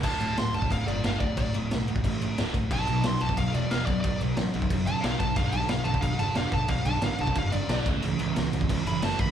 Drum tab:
CC |x-x-x-x-x-x-x-x-|x-x-x-x-x-x-x-x-|x-x-x-x-x-x-x-x-|x-x-x-x-x-x-x-x-|
SD |----o-------o---|----o-------o---|----o-------o---|----o-------o---|
BD |o------oo-----o-|o------oo-----o-|o------oo-----o-|o------oo-----o-|

CC |x-x-x-x-x-x-x-x-|x-x-x-x-x-x-x-x-|x-x-x-x-x-x-x-x-|
SD |----o-------o---|----o-------o---|----o-------o---|
BD |o------oo-----o-|o------oo-----o-|-------oo-----o-|